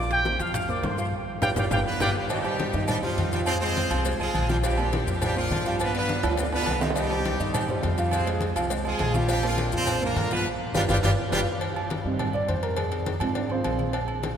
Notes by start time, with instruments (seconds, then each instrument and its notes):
Already playing: upright bass A#1, grand piano F3 F4 F5, trumpet section D5 D6
0.11 trumpet section G4 G5, high bongo, high conga, high timbale, maracas
0.25 grand piano A#3 A#4 C5, high bongo, high conga, maracas
0.39 upright bass F2, grand piano F3 F4 F5, trumpet section F5, high bongo, high conga, high timbale, maracas
0.54 trumpet section F5, high bongo, high conga, low conga, high timbale, maracas
0.68 grand piano A#3 A#4 C5, trumpet section D5 D6, high conga, low conga, maracas
0.83 upright bass G2, grand piano A#3 A#4 C5, trumpet section C5 C6, high bongo, low bongo, high conga, high timbale, low timbale, maracas
0.98 grand piano F3 F4 F5, trumpet section C5 C6, high bongo, maracas
1.42 upright bass G1, grand piano F4 G4 B4, trumpet section D5 F5 G5, low bongo, low conga, high timbale, maracas
1.55 upright bass G1, grand piano F4 G4 B4, trumpet section D5 F5 G5, low bongo, low conga, high timbale, maracas
1.71 upright bass G1, grand piano F4 G4 B4, trumpet section D5 F5 G5, low bongo, low conga, high timbale, maracas
1.86 horn section B3 D4 F4 B4
2.00 upright bass G1, grand piano F4 G4 B4, trumpet section D5 F5 G5, low bongo, low conga, high timbale, maracas
2.15 horn section G3 G4
2.29 grand piano D#3 D#4 D#5, horn section G3 C4 D#4 G4, cowbell, high conga, low agogo, maracas
2.44 grand piano G3 G4 C5, high conga, low agogo, maracas
2.59 cowbell, high conga, low agogo, maracas
2.73 upright bass G2, grand piano D#3 D#4 D#5, high conga, maracas
2.88 horn section G3 C4 D#4 G4, cowbell, high conga, low conga, low agogo, maracas
3.02 horn section F3 C4 F4, grand piano G3 G4 C5, high conga, low conga, low agogo, maracas
3.17 upright bass F2, cowbell, high conga, maracas
3.32 grand piano F3 F4 F5, horn section G3 G4, cowbell, high conga, maracas
3.46 horn section C4 F4 G#4 C5, cowbell, high conga, low agogo, maracas
3.61 grand piano G#3 G#4 C5, horn section C4 F4 G#4 C5, cowbell, high conga, low agogo, maracas
3.76 cowbell, high conga, maracas
3.90 upright bass C2, grand piano F3 F4 F5, cowbell, high conga, low agogo, maracas
4.04 grand piano G#3 G#4 C5, cowbell, high conga, maracas
4.19 upright bass C2, grand piano G#3 G#4 C5, horn section G#3 C4 F4 G#4, high conga, low agogo, maracas
4.34 upright bass A#1, cowbell, high conga, low agogo, maracas
4.49 grand piano F3 F4 F5, horn section G3 G4, high conga, low agogo, maracas
4.63 grand piano F3 F4 F5, horn section G3 C4 D4 G4, cowbell, high conga, low agogo, maracas
4.78 grand piano A#3 A#4 C5, high conga, low agogo, maracas
4.93 cowbell, high conga, low agogo, maracas
5.07 upright bass F2, grand piano F3 F4 F5, high conga, maracas
5.22 horn section G3 C4 D4 G4, cowbell, high conga, low conga, low agogo, maracas
5.35 horn section F3 C4 D4 F4, grand piano A#3 A#4 C5, high conga, low conga, low agogo, maracas
5.51 upright bass G2, cowbell, high conga, low timbale, maracas
5.65 grand piano F3 F4 F5, horn section G3 G4, cowbell, maracas
5.80 horn section B3 D4 F4 B4, cowbell, high conga, low agogo, maracas
5.94 grand piano B3 B4 D5, horn section B3 D4 F4 B4, cowbell, high conga, low agogo, maracas
6.09 cowbell, high conga, maracas
6.23 upright bass D2, grand piano F3 F4 F5, cowbell, high conga, high timbale, low agogo, maracas
6.33 high timbale
6.37 grand piano B3 B4 D5, cowbell, high conga, maracas
6.43 low timbale
6.53 grand piano B3 B4 D5, horn section B3 D4 F4 B4, high conga, high timbale, low agogo, maracas
6.62 low timbale, low agogo
6.67 upright bass C2, cowbell, high conga, maracas
6.71 low timbale
6.81 grand piano D#3 D#4 D#5, horn section G3 G4, high conga, low timbale, low agogo, maracas
6.90 low timbale
6.95 grand piano D#3 D#4 D#5, horn section G3 C4 D#4 G4, cowbell, high conga, low agogo, maracas
7.10 grand piano G3 G4 C5, high conga, low agogo, maracas
7.25 cowbell, high conga, low agogo, maracas
7.39 upright bass G2, grand piano D#3 D#4 D#5, high conga, maracas
7.54 horn section G3 C4 D#4 G4, cowbell, high conga, low conga, low agogo, maracas
7.68 horn section F3 C4 F4, grand piano G3 G4 C5, high conga, low conga, low agogo, maracas
7.83 upright bass F2, cowbell, high conga, low timbale, maracas
7.98 grand piano F3 F4 F5, horn section G3 G4, cowbell, maracas
8.11 horn section C4 F4 G#4 C5, cowbell, high conga, low agogo, maracas
8.26 grand piano G#3 G#4 C5, cowbell, high conga, low agogo, maracas
8.41 cowbell, high conga, maracas
8.56 upright bass C2, grand piano F3 F4 F5, cowbell, high conga, low agogo, maracas
8.70 grand piano G#3 G#4 C5, cowbell, high conga, maracas
8.85 grand piano G#3 G#4 C5, horn section G#3 C4 F4 G#4, high conga, low agogo, maracas
8.99 upright bass A#1, cowbell, high conga, low timbale, low agogo, maracas
9.14 grand piano F3 F4 F5, horn section G3 G4, high conga, low agogo, maracas
9.28 grand piano F3 F4 F5, horn section G3 C4 D4 G4, cowbell, high conga, low agogo, maracas
9.43 horn section F3 C4 D4 F4, grand piano A#3 A#4 C5, high conga, low agogo, maracas
9.58 cowbell, high conga, low agogo, maracas
9.72 upright bass F2, grand piano F3 F4 F5, horn section C4 F4 C5, high conga, maracas
9.87 cowbell, high conga, low conga, low agogo, maracas
10.01 grand piano A#3 A#4 C5, horn section D4 F4, high conga, low conga, low agogo, maracas
10.06 horn section A#3 A#4
10.16 upright bass G2, cowbell, high conga, low timbale, maracas
10.31 grand piano F3 F4 F5, horn section B3 D4 F4 B4, cowbell, high conga, maracas
10.74 upright bass G1, horn section G3 D4 F4 G4, grand piano F4 G4 B4, cowbell, high conga, high timbale, maracas
10.89 upright bass G1, horn section G3 D4 F4 G4, grand piano F4 G4 B4, cowbell, high conga, high timbale, maracas
11.03 upright bass G1, horn section G3 D4 F4 G4, grand piano F4 G4 B4, cowbell, high conga, high timbale, maracas
11.31 upright bass G1, horn section G3 D4 F4 G4, grand piano F4 G4 B4, cowbell, high conga, high timbale, maracas
11.61 cowbell, high conga, low agogo
11.76 high conga, low agogo
11.90 cowbell, high conga, low agogo
12.05 upright bass G2, grand piano D#3 G3 C4, high conga
12.19 cowbell, high conga, low conga, low agogo
12.33 grand piano D5, high conga, low conga, low agogo
12.48 upright bass F2, grand piano C5, cowbell, high conga
12.63 grand piano A#4, cowbell
12.77 grand piano G#4, cowbell, high conga, low agogo
12.91 cowbell, high conga, low agogo
13.06 cowbell, high conga
13.20 upright bass G#2, grand piano F3 G#3 C4, cowbell, high conga, low agogo
13.35 grand piano D4 D5, cowbell, high conga
13.49 grand piano C4 F4 G#4 C5, high conga, low agogo
13.64 upright bass A#1, cowbell, high conga, low agogo
13.79 high conga, low agogo
13.93 cowbell, high conga, low agogo
14.08 high conga, low agogo
14.23 cowbell, high conga, low agogo